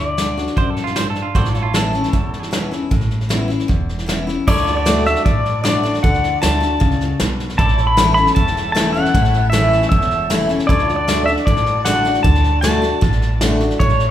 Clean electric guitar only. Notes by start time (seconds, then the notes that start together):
0.58 C5
0.70 A4
0.84 F4
0.96 C5
1.10 A4
1.22 F4
1.35 C5
1.49 A4
1.63 F4
1.76 A4